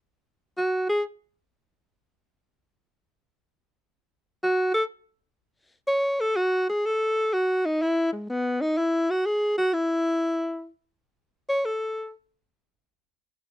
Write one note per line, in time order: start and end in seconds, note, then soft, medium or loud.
0.57 0.86 F#4 medium
0.89 1.03 G#4 medium
4.43 4.72 F#4 medium
4.74 4.83 A4 medium
5.87 6.22 C#5 medium
6.20 6.38 A4 medium
6.36 6.67 F#4 medium
6.69 6.87 G#4 medium
6.86 7.35 A4 loud
7.33 7.67 F#4 medium
7.66 7.83 D#4 medium
7.82 8.12 E4 medium
8.13 8.29 G#3 soft
8.29 8.63 B3 medium
8.61 8.79 D#4 medium
8.78 9.12 E4 medium
9.10 9.27 F#4 medium
9.26 9.56 G#4 medium
9.58 9.75 F#4 medium
9.74 10.68 E4 medium
11.49 11.67 C#5 medium
11.65 12.12 A4 medium